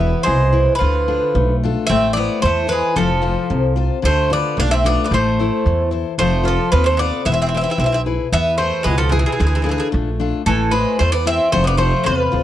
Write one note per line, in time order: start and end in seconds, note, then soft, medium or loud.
0.00 0.11 E1 medium
0.00 0.25 E3 medium
0.00 0.23 B3 medium
0.00 0.43 E4 medium
0.00 0.43 G#4 soft
0.00 0.43 B4 soft
0.00 0.22 E5 loud
0.23 0.79 B2 medium
0.23 0.76 G#3 medium
0.23 0.75 C5 medium
0.28 0.65 C2 medium
0.53 0.75 E4 medium
0.53 0.75 G#4 soft
0.53 0.75 B4 medium
0.75 1.56 F3 medium
0.75 1.55 B4 medium
0.81 1.18 D2 medium
0.81 1.33 D3 medium
1.08 1.51 D4 soft
1.08 1.51 F4 soft
1.08 1.51 A4 medium
1.35 1.72 B1 medium
1.35 1.87 A3 medium
1.63 1.84 D4 soft
1.63 1.85 F4 soft
1.63 1.85 A4 medium
1.87 2.27 A1 medium
1.87 2.41 A3 medium
1.87 2.14 C4 medium
1.87 2.12 E5 loud
2.13 2.41 B3 medium
2.13 2.59 E4 medium
2.13 2.59 A4 soft
2.13 2.39 D5 medium
2.17 2.59 C5 soft
2.42 2.81 E2 medium
2.42 2.94 E3 medium
2.42 2.69 A3 medium
2.42 2.68 C5 loud
2.67 2.89 E4 soft
2.67 2.90 A4 soft
2.67 2.94 B4 medium
2.67 2.90 C5 medium
2.72 2.96 G#3 medium
2.96 3.34 F1 medium
2.96 3.48 F3 medium
2.96 3.74 F3 medium
2.96 3.73 A4 medium
3.22 3.65 F4 medium
3.22 3.65 A4 soft
3.22 3.66 C5 medium
3.50 3.88 C2 medium
3.50 4.02 C3 medium
3.76 3.98 F4 soft
3.76 3.98 A4 soft
3.76 3.99 C5 medium
4.02 4.41 D2 medium
4.02 4.55 D3 medium
4.02 4.29 A3 medium
4.02 4.32 C5 medium
4.30 4.57 B3 medium
4.30 4.73 D4 medium
4.30 4.73 F4 soft
4.30 4.74 A4 medium
4.30 4.59 D5 medium
4.57 4.95 B1 medium
4.57 5.09 A3 medium
4.57 4.71 D4 medium
4.57 4.71 F5 loud
4.71 4.84 C4 medium
4.71 4.83 E5 loud
4.84 5.03 B3 medium
4.84 5.06 D4 soft
4.84 5.06 F4 soft
4.84 5.06 A4 medium
4.84 5.04 D5 loud
5.04 5.11 B3 medium
5.04 5.12 D5 medium
5.11 5.49 A1 loud
5.11 5.63 A3 medium
5.11 5.89 A3 medium
5.11 5.89 C5 medium
5.39 5.82 E4 soft
5.39 5.82 A4 soft
5.39 5.82 C5 medium
5.66 6.03 E2 loud
5.66 6.18 E3 medium
5.91 6.13 E4 soft
5.91 6.13 A4 soft
5.91 6.13 C5 soft
6.18 6.56 F1 medium
6.18 6.71 F3 medium
6.18 6.44 A3 medium
6.18 6.46 C5 medium
6.43 6.70 F3 medium
6.43 6.87 F4 medium
6.43 6.87 A4 soft
6.43 6.88 C5 medium
6.48 6.71 A4 medium
6.72 7.10 D#2 loud
6.72 7.24 C3 medium
6.72 6.85 F3 medium
6.72 6.86 B4 medium
6.84 6.97 A3 medium
6.84 6.98 C5 medium
6.97 7.23 B3 medium
6.97 7.20 F4 medium
6.97 7.21 A4 soft
6.97 7.21 C5 soft
6.97 7.26 D5 loud
7.25 7.63 E1 medium
7.25 7.78 E3 medium
7.25 7.32 B3 medium
7.25 7.32 E5 loud
7.32 7.39 C4 medium
7.32 7.40 E5 medium
7.42 7.45 C4 medium
7.42 7.47 E5 medium
7.46 7.53 C4 soft
7.46 7.55 E5 medium
7.54 7.60 C4 medium
7.54 7.96 E4 medium
7.54 7.97 G#4 soft
7.54 7.97 B4 medium
7.54 7.62 E5 medium
7.61 7.69 C4 medium
7.61 7.70 E5 medium
7.70 7.77 C4 medium
7.70 7.78 E5 medium
7.78 8.16 B1 medium
7.78 8.32 B2 medium
7.78 7.83 C4 soft
7.78 7.85 E5 medium
7.84 7.91 C4 medium
7.84 7.93 E5 medium
7.92 8.00 C4 medium
7.92 8.01 E5 medium
8.06 8.27 E4 soft
8.06 8.27 G#4 soft
8.06 8.27 B4 medium
8.32 8.70 E2 medium
8.32 8.85 E3 medium
8.32 8.57 B3 medium
8.32 8.57 E5 loud
8.58 8.83 A3 medium
8.58 9.02 E4 medium
8.58 9.02 G#4 soft
8.58 9.02 B4 soft
8.58 8.84 C5 medium
8.83 9.23 C#2 loud
8.83 9.38 B2 medium
8.83 8.97 G#3 medium
8.83 8.97 B4 medium
8.98 9.11 F3 medium
8.98 9.11 A4 medium
9.09 9.18 E3 medium
9.09 9.34 E4 medium
9.09 9.18 G#4 medium
9.09 9.34 G#4 soft
9.09 9.34 B4 medium
9.19 9.25 E3 soft
9.19 9.25 G#4 medium
9.26 9.32 E3 medium
9.26 9.31 G#4 medium
9.32 9.40 E3 soft
9.32 9.39 G#4 medium
9.39 9.77 D2 medium
9.39 9.91 D3 medium
9.39 9.47 E3 soft
9.39 9.45 G#4 medium
9.47 9.54 E3 soft
9.47 9.54 G#4 soft
9.55 9.61 E3 soft
9.55 9.63 G#4 medium
9.62 9.68 E3 soft
9.62 10.08 D4 medium
9.62 10.09 F4 soft
9.62 9.70 G#4 soft
9.66 9.77 E3 medium
9.66 10.09 A4 medium
9.71 9.78 G#4 medium
9.78 9.86 E3 soft
9.78 9.87 G#4 medium
9.92 10.31 A#1 medium
9.92 10.44 A3 medium
10.20 10.41 D4 soft
10.20 10.42 F4 soft
10.20 10.42 A4 medium
10.46 10.84 A1 loud
10.46 10.72 E3 medium
10.46 10.98 A3 medium
10.46 10.71 A4 medium
10.71 10.98 G#3 medium
10.71 11.15 E4 medium
10.71 11.16 A4 soft
10.71 10.99 B4 medium
10.71 11.16 C5 medium
10.99 11.38 E2 loud
10.99 11.52 E3 medium
10.99 11.12 A3 medium
10.99 11.12 C5 medium
11.12 11.25 B3 medium
11.12 11.25 D5 medium
11.26 11.52 C4 medium
11.26 11.47 E4 medium
11.26 11.48 A4 soft
11.26 11.48 C5 soft
11.26 11.52 E5 loud
11.52 11.91 F1 loud
11.52 12.05 F3 medium
11.52 11.64 A3 medium
11.52 11.65 C5 medium
11.64 11.77 B3 medium
11.64 11.78 D5 medium
11.77 12.04 A3 medium
11.77 12.22 F4 soft
11.77 12.22 A4 soft
11.77 12.04 C5 medium
11.77 12.22 C5 medium
12.04 12.43 C3 medium
12.04 12.42 F3 medium
12.04 12.43 B4 medium
12.08 12.31 E2 medium
12.32 12.43 D2 medium
12.32 12.43 F4 soft
12.32 12.43 A4 soft
12.32 12.43 C5 medium